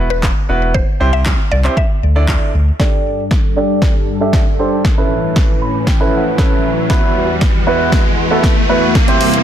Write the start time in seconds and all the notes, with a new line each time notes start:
Already playing: E1 B3 E4 F#4 A4 B4
0.10 B4
0.23 kick, snare, clap
0.49 E1 B3 E4 F#4 B4
0.74 C5, kick
1.00 C2 C4 E4 G4 C5
1.13 E5
1.26 kick, snare, clap
1.51 C2 D5
1.64 C4 E4 G4 C5, clap
1.77 E5, kick
2.03 D2
2.15 D4 E4 A4 D5
2.28 kick, snare, clap
2.54 D2
2.79 G2 G3 D4 G4 A4 D5, kick, snare, riser
3.31 kick, snare
3.56 D4 G4 A4 D5
3.82 kick, snare
4.20 D4 G4 A4 E5
4.33 kick, snare
4.59 D4 G4 A4 C5
4.85 A2 E3 C#4 B4, kick, snare
4.97 C#4 E4 A4 B4
5.36 kick, snare
5.62 B5
5.87 G5, kick, snare
6.00 C#4 E4 A4 B4
6.13 F#5
6.38 C#4 E4 A4 B4 E5, kick, snare
6.90 E2 B3 E4 F#4 B4, kick, snare
7.41 kick, snare
7.67 B3 E4 F#4 B4
7.92 kick, snare
8.31 B3 E4 F#4 A4
8.44 kick, snare
8.69 B3 E4 F#4 B4
8.95 C3 G3 E4 C5, kick, snare
9.08 C4 E4 G4 C5, closed hi-hat
9.21 open hi-hat
9.34 closed hi-hat